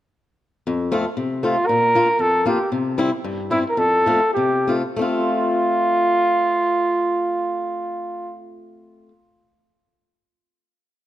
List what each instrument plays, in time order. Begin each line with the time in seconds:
0.67 steel-string acoustic guitar F2
0.92 steel-string acoustic guitar A3 C4 F4
1.17 steel-string acoustic guitar C3
1.43 steel-string acoustic guitar A3 C4 F4, trumpet F4
1.66 steel-string acoustic guitar A#2, trumpet A#4
1.95 steel-string acoustic guitar A#3 D4 F4
2.19 steel-string acoustic guitar F2, trumpet A4
2.46 steel-string acoustic guitar A#3 D4 F4, trumpet G4
2.72 steel-string acoustic guitar C3
2.98 steel-string acoustic guitar G3 C4 E4
3.24 steel-string acoustic guitar G2
3.51 steel-string acoustic guitar G3 C4 E4, trumpet E4
3.69 trumpet A#4
3.77 steel-string acoustic guitar F2, trumpet A4
4.06 steel-string acoustic guitar A3 C4 F4
4.34 steel-string acoustic guitar C3, trumpet G4
4.67 steel-string acoustic guitar A3 C4 F4
4.96 steel-string acoustic guitar A3 C4, trumpet F4
5.01 steel-string acoustic guitar F4